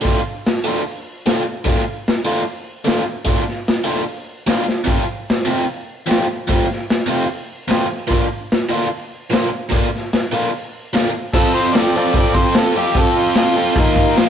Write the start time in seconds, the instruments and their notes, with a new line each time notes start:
0.02 overdriven electric guitar D3 A3 D4 F4, kick, open hi-hat
0.45 snare, open hi-hat
0.57 snare
0.64 overdriven electric guitar D3 A3 D4 F4
0.87 open hi-hat
1.26 overdriven electric guitar D3 A3 D4 F4, snare, open hi-hat
1.65 overdriven electric guitar D3 A3 D4 F4, kick, open hi-hat
2.07 snare, open hi-hat
2.25 overdriven electric guitar D3 A3 D4 F4
2.47 open hi-hat
2.85 overdriven electric guitar D3 A3 D4 F4, snare, open hi-hat
3.25 overdriven electric guitar D3 A3 D4 F4, kick, open hi-hat
3.48 snare
3.67 snare, open hi-hat
3.84 overdriven electric guitar D3 A3 D4 F4
4.08 open hi-hat
4.46 overdriven electric guitar D3 A3 D4 F4, snare, open hi-hat
4.68 snare
4.84 overdriven electric guitar F2 C3 F3 A3 C4 F4, kick, open hi-hat
5.29 snare, open hi-hat
5.41 snare
5.45 overdriven electric guitar F2 C3 F3 A3 C4 F4
5.69 open hi-hat
6.06 overdriven electric guitar F2 C3 F3 A3 C4 F4, open hi-hat
6.11 snare
6.47 overdriven electric guitar F2 C3 F3 A3 C4 F4, kick, open hi-hat
6.71 snare
6.89 snare, open hi-hat
7.00 snare
7.06 overdriven electric guitar F2 C3 F3 A3 C4 F4
7.29 open hi-hat
7.68 overdriven electric guitar F2 C3 F3 A3 C4 F4, snare, open hi-hat
8.08 overdriven electric guitar A#2 D3 A#3 D4 F4, kick, open hi-hat
8.51 snare, open hi-hat
8.69 overdriven electric guitar A#2 D3 A#3 D4 F4
8.92 open hi-hat
9.31 overdriven electric guitar A#2 D3 A#3 D4 F4, snare, open hi-hat
9.70 overdriven electric guitar A#2 D3 A#3 D4 F4, kick, open hi-hat
9.95 snare
10.12 snare, open hi-hat
10.32 overdriven electric guitar A#2 D3 A#3 D4 F4
10.54 open hi-hat
10.93 overdriven electric guitar A#2 D3 A#3 D4 F4, snare, open hi-hat
11.34 overdriven electric guitar F3 C4 F4 A4, harmonica A4, kick, crash
11.54 harmonica C5
11.73 overdriven electric guitar F3 C4, harmonica D5, snare, open hi-hat
11.77 overdriven electric guitar F4 A4
11.95 overdriven electric guitar F3 C4 F4 A4
12.13 overdriven electric guitar F3 C4 F4 A4, kick, open hi-hat
12.35 harmonica C5, kick
12.54 overdriven electric guitar F3 C4, harmonica A4, snare, open hi-hat
12.58 overdriven electric guitar F4 A4
12.76 overdriven electric guitar F3 C4 F4 A4, harmonica G4
12.94 overdriven electric guitar F3 C4, kick, open hi-hat
12.98 overdriven electric guitar F4 A4, harmonica A4
13.17 harmonica F4
13.34 overdriven electric guitar F3 C4 F4 A4, snare, open hi-hat
13.55 overdriven electric guitar F3 C4 F4 A4
13.75 overdriven electric guitar D#3 A#3, kick, open hi-hat
13.79 overdriven electric guitar D#4 A#4
13.96 kick
14.16 overdriven electric guitar A#2 F3 A#3 F4, snare, open hi-hat